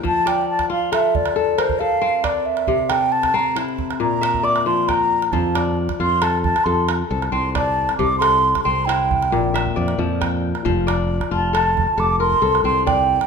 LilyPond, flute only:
\new Staff \with { instrumentName = "Flute" } { \time 12/8 \key f \major \tempo 4. = 90 a''8 g''8 a''8 f''8 e''8 d''4 c''8 f''4 d''8 e''8~ | e''8 g''8 a''8 bes''8 r4 bes''4 d'''8 c'''8 bes''4 | a''4 r8 c'''8 a''8 a''8 c'''8 r4 c'''8 a''4 | d'''8 c'''4 c'''8 g''2~ g''8 r4. |
r4. a''8 a''4 d'''8 c'''4 c'''8 g''4 | }